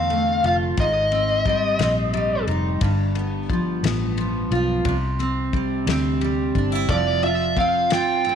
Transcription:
Already playing: fingered electric bass E2, steel-string acoustic guitar D3 C4, lead electric guitar F5
0.10 steel-string acoustic guitar A3, ride
0.44 fingered electric bass F1, steel-string acoustic guitar F4, lead electric guitar F5, ride
0.78 fingered electric bass G#1, steel-string acoustic guitar G#2, lead electric guitar D#5, kick, ride
1.12 steel-string acoustic guitar C4, ride
1.46 steel-string acoustic guitar G3, kick, ride
1.79 fingered electric bass A#1, steel-string acoustic guitar C4, snare, ride
2.13 steel-string acoustic guitar G3, ride
2.47 fingered electric bass F1, steel-string acoustic guitar D#4, ride
2.81 fingered electric bass G1, steel-string acoustic guitar G2, kick, ride
3.15 steel-string acoustic guitar B3, ride
3.50 steel-string acoustic guitar F3, kick, ride
3.83 fingered electric bass A1, steel-string acoustic guitar B3, snare, ride
4.17 steel-string acoustic guitar F3, ride
4.51 fingered electric bass B1, steel-string acoustic guitar F4, ride
4.85 fingered electric bass C2, steel-string acoustic guitar C3, kick, ride
5.19 steel-string acoustic guitar C4, ride
5.53 steel-string acoustic guitar G3, kick, ride
5.86 fingered electric bass D2, steel-string acoustic guitar C4, snare, ride
6.21 steel-string acoustic guitar G3, ride
6.55 fingered electric bass G1, steel-string acoustic guitar D4, kick, ride
6.72 steel-string acoustic guitar E4
6.89 fingered electric bass F1, steel-string acoustic guitar F3, lead electric guitar D5, kick, ride
7.23 steel-string acoustic guitar F4, lead electric guitar E5, ride
7.57 steel-string acoustic guitar C4, lead electric guitar F5, kick, ride
7.90 fingered electric bass G1, steel-string acoustic guitar F4, lead electric guitar G5, snare, ride
8.25 steel-string acoustic guitar C4, ride

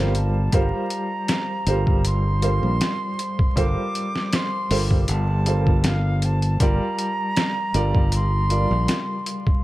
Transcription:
Already playing: fingered electric bass G1, felt piano G3 F4 D5
0.00 felt piano A#4 C5
0.15 flute A5, closed hi-hat
0.52 fingered electric bass G1, felt piano G3 F4 G4 A#4 C5, flute A#5, kick, closed hi-hat
0.90 closed hi-hat
1.28 snare, closed hi-hat
1.67 fingered electric bass G1, felt piano G3 F4 G4 A#4 C5, closed hi-hat
1.87 kick
2.05 flute C6, closed hi-hat
2.42 felt piano G3 F4 A4 A#4 C5, closed hi-hat
2.63 fingered electric bass A#1
2.81 snare, closed hi-hat
3.19 closed hi-hat
3.39 kick
3.56 fingered electric bass G1, felt piano G3 F4 A4 A#4 C5, flute D6, kick, closed hi-hat
3.95 closed hi-hat
4.16 snare
4.33 flute C6, snare, closed hi-hat
4.71 fingered electric bass G1, felt piano G3 F4 A4 A#4 C5, open hi-hat
4.91 kick
5.08 fingered electric bass G1, flute A5, closed hi-hat
5.46 felt piano G3 F4 A4 A#4 C5, closed hi-hat
5.67 kick
5.84 flute F5, snare, closed hi-hat
6.22 flute A5, closed hi-hat
6.42 closed hi-hat
6.60 fingered electric bass G1, felt piano G3 F4 A#4 D5, flute A#5, kick, closed hi-hat
6.99 closed hi-hat
7.36 snare, closed hi-hat
7.74 fingered electric bass G1, felt piano G3 F4 A#4 D5, closed hi-hat
7.95 kick
8.12 flute C6, closed hi-hat
8.50 felt piano G3 F4 A#4 D5, closed hi-hat
8.71 fingered electric bass A#1
8.88 snare, closed hi-hat
9.26 closed hi-hat
9.47 kick

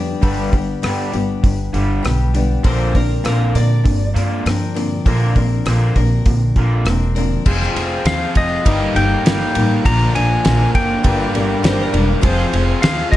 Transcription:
Already playing: upright bass F2, overdriven electric guitar G2 D3, steel-string acoustic guitar G3 B3 D4 G4
0.22 upright bass G1, overdriven electric guitar G2 D3 G3, steel-string acoustic guitar G2 D3 G3 B3 D4 G4, kick, open hi-hat
0.52 overdriven electric guitar G2 D3, steel-string acoustic guitar G3 B3 D4 G4, kick, open hi-hat
0.82 upright bass G1, overdriven electric guitar G2 D3 G3, steel-string acoustic guitar G3 B3 D4 G4, cross-stick, open hi-hat
1.12 upright bass G1, overdriven electric guitar G2 D3, steel-string acoustic guitar G3 B3 D4 G4, open hi-hat
1.43 upright bass G1, overdriven electric guitar G2 D3, kick, open hi-hat
1.73 upright bass G1, overdriven electric guitar G2 D3 G3, open hi-hat
2.03 upright bass B1, overdriven electric guitar G2 D3, steel-string acoustic guitar G3 B3 D4 G4, cross-stick, open hi-hat
2.34 overdriven electric guitar G2 D3, steel-string acoustic guitar G3 B3 D4 G4, open hi-hat
2.63 upright bass A#1, overdriven electric guitar A#2 D3 A#3, steel-string acoustic guitar A#2 D3 F3 C4 D4 A#4, electric slide guitar C5, kick, open hi-hat
2.94 overdriven electric guitar A#2 D3, steel-string acoustic guitar F3 C4 D4 A#4, electric slide guitar A#4, kick, open hi-hat
3.24 upright bass A#1, overdriven electric guitar A#2 D3 A#3, steel-string acoustic guitar F3 C4 D4 A#4, electric slide guitar A#4, cross-stick, open hi-hat
3.54 overdriven electric guitar A#2 D3, upright bass A#2, steel-string acoustic guitar F3 C4 D4 A#4, electric slide guitar D5, open hi-hat
3.84 upright bass G1, overdriven electric guitar A#2 D3, kick, open hi-hat
4.14 upright bass G2, overdriven electric guitar A#2 D3 A#3, open hi-hat
4.46 upright bass G2, overdriven electric guitar A#2 D3, steel-string acoustic guitar F3 C4 D4 A#4, cross-stick, open hi-hat
4.74 overdriven electric guitar A#2 D3, steel-string acoustic guitar F3 C4 D4 A#4, open hi-hat
5.05 upright bass A#1, steel-string acoustic guitar A#2 D3 F3 C4 D4 A#4, overdriven electric guitar A#2 D3 A#3, kick, open hi-hat
5.36 overdriven electric guitar A#2 D3, steel-string acoustic guitar F3 C4 D4 A#4, kick, open hi-hat
5.65 upright bass A#1, overdriven electric guitar A#2 D3 A#3, steel-string acoustic guitar F3 C4 D4 A#4, cross-stick, open hi-hat
5.95 upright bass A#1, overdriven electric guitar A#2 D3, steel-string acoustic guitar F3 C4 D4 A#4, kick, open hi-hat
6.26 upright bass A#1, overdriven electric guitar A#2 D3, kick, open hi-hat
6.56 upright bass A#1, overdriven electric guitar A#2 D3 A#3, kick, open hi-hat
6.85 upright bass E1, overdriven electric guitar A#2 D3, steel-string acoustic guitar F3 C4 D4 A#4, cross-stick, open hi-hat
7.15 overdriven electric guitar A#2 D3, steel-string acoustic guitar F3 C4 D4 A#4, open hi-hat
7.45 upright bass F1, steel-string acoustic guitar F3 C4 F4 G#4, overdriven electric guitar F3 C4 F4 G#4, tonewheel organ C4 F4 G#4 C5, kick, crash
7.62 snare
7.75 upright bass F1, steel-string acoustic guitar C4 F4 G#4, ride
8.05 upright bass D#2, steel-string acoustic guitar F3 C4 F4 G#4, pedal steel guitar F5, snare, ride
8.35 upright bass F1, pedal steel guitar D#5, kick, ride
8.65 upright bass G1, steel-string acoustic guitar G2 D#3 G3 A#3 D#4 G4, overdriven electric guitar G3 A#3 D#4 A#4, tonewheel organ A#3 D#4 G4 A#4, kick, ride
8.94 upright bass G1, steel-string acoustic guitar G3 A#3 D#4 G4, pedal steel guitar G5, ride
9.25 upright bass G1, steel-string acoustic guitar G3 A#3 D#4 G4, snare, ride
9.55 upright bass A1, steel-string acoustic guitar G3 A#3 D#4 G4, ride
9.84 upright bass A#1, overdriven electric guitar A#2 D3 F3 A#3 D4 A#4, steel-string acoustic guitar A#2 D3 F3 A#3 D4 A#4, tonewheel organ A#3 D4 F4 A#4, pedal steel guitar A#5, kick, ride
10.14 upright bass A#1, steel-string acoustic guitar F3 A#3 D4 A#4, pedal steel guitar G#5, ride
10.44 upright bass A#1, steel-string acoustic guitar F3 A#3 D4 A#4, snare, ride
10.75 upright bass F#1, pedal steel guitar G5, kick, ride
11.03 upright bass G1, steel-string acoustic guitar G2 D3 G3 A#3 D4 A#4, overdriven electric guitar G2 D3 G3 A#3 D4 A#4, tonewheel organ A#3 D4 G4 A#4, kick, ride
11.34 upright bass G1, steel-string acoustic guitar G3 A#3 D4 A#4, ride
11.63 upright bass G1, steel-string acoustic guitar G3 A#3 D4 A#4, electric slide guitar C5, snare, ride
11.81 electric slide guitar A#4
11.92 upright bass E1, steel-string acoustic guitar G3 A#3 D4 A#4, ride
12.21 upright bass F1, steel-string acoustic guitar F3 C4 F4 G#4, overdriven electric guitar F3 C4 F4 G#4, tonewheel organ C4 F4 G#4 C5, electric slide guitar C5, kick, ride
12.52 upright bass F1, steel-string acoustic guitar C4 F4 G#4, ride
12.81 upright bass D#2, steel-string acoustic guitar F3 C4 F4 G#4, pedal steel guitar F5, snare, ride
13.12 upright bass F#1, pedal steel guitar D#5, kick, ride

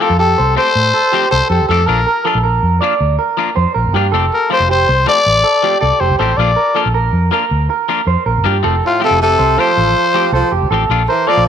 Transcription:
0.00 clean electric guitar F3 A3 C4 F4 G4, trumpet A4
0.10 fingered electric bass F2
0.19 clean electric guitar G4, trumpet A4
0.38 fingered electric bass C2, clean electric guitar C5
0.55 clean electric guitar A3 C4 G4 A4, trumpet C5, muted clean electric guitar stroke
0.75 fingered electric bass A2
0.94 clean electric guitar A4
1.12 clean electric guitar F3 A3 C4 G4
1.31 fingered electric bass C2, clean electric guitar A4, trumpet C5
1.50 fingered electric bass F2, clean electric guitar G4, trumpet A4
1.61 fingered electric bass D2
1.68 fingered electric bass F2, clean electric guitar F3 A3 C4 G4 A4, trumpet A4
1.86 fingered electric bass A#1, clean electric guitar F3 A#3 D4 F4, trumpet A#4
2.07 clean electric guitar A#4
2.25 clean electric guitar F3 D4 F4 A4, muted clean electric guitar stroke
2.35 fingered electric bass A#1
2.44 clean electric guitar A#4
2.63 fingered electric bass F2
2.81 clean electric guitar F3 A#3 D4 F4 D5
3.00 fingered electric bass D2
3.19 clean electric guitar A#4
3.37 clean electric guitar F3 A#3 D4 F4
3.56 fingered electric bass F2, clean electric guitar C5
3.74 fingered electric bass A#1, clean electric guitar A#4
3.84 fingered electric bass G1
3.94 fingered electric bass G2, clean electric guitar F3 A#3 D4 F4 G4
4.12 fingered electric bass F1, clean electric guitar F3 A3 C4 G4 A4
4.34 trumpet A#4
4.50 clean electric guitar F3 A3 C4 F4 G4, trumpet C5
4.60 fingered electric bass F1
4.69 clean electric guitar G4, trumpet C5
4.88 fingered electric bass C2, clean electric guitar C5
5.06 clean electric guitar F3 A3 C4 G4 A4, trumpet D5
5.26 fingered electric bass A1
5.44 clean electric guitar A4
5.63 clean electric guitar F3 A3 C4 G4, muted clean electric guitar stroke
5.80 fingered electric bass C2, clean electric guitar A4, trumpet D5
6.00 fingered electric bass F1, clean electric guitar G4, trumpet C5
6.10 fingered electric bass D2
6.19 fingered electric bass A1, clean electric guitar F3 A3 C4 G4 A4, trumpet C5
6.37 fingered electric bass A#1, clean electric guitar F3 A#3 D4 F4, trumpet D5
6.56 clean electric guitar A#4
6.75 clean electric guitar F3 A#3 D4 F4 A4
6.86 fingered electric bass A#1
6.94 clean electric guitar A#4
7.13 fingered electric bass F2
7.31 clean electric guitar F3 A#3 D4 F4 A#4
7.51 fingered electric bass D2
7.70 clean electric guitar A#4
7.89 clean electric guitar F3 A#3 D4 F4
8.07 fingered electric bass F2, clean electric guitar C5
8.26 fingered electric bass A#1, clean electric guitar A#4
8.36 fingered electric bass G1
8.44 fingered electric bass G2, clean electric guitar F3 A#3 D4 F4 G4
8.63 fingered electric bass F1, clean electric guitar F3 A3 C4 A4, muted clean electric guitar stroke
8.85 tenor saxophone A2, trumpet F4
9.00 tenor saxophone C3, clean electric guitar F3 A3 C4 F4 G4
9.04 trumpet A4
9.11 fingered electric bass F1
9.20 tenor saxophone C3, trumpet A4, muted clean electric guitar stroke
9.39 fingered electric bass C2, clean electric guitar C5
9.58 clean electric guitar F3 A3 C4 G4 A4, tenor saxophone F3, trumpet C5
9.77 fingered electric bass A1
10.14 clean electric guitar F3 A3 C4 G4
10.32 fingered electric bass C2, tenor saxophone F3, clean electric guitar A4, trumpet C5
10.52 fingered electric bass F1, clean electric guitar G4
10.62 fingered electric bass D2
10.71 fingered electric bass A1, clean electric guitar F3 C4 G4 A4, muted clean electric guitar stroke
10.89 fingered electric bass A#1, clean electric guitar F3 A#3 D4 F4
11.09 tenor saxophone E3, clean electric guitar A#4, trumpet C5
11.27 clean electric guitar F3 A#3 F4 A4, tenor saxophone F3, trumpet D5
11.37 fingered electric bass A#1

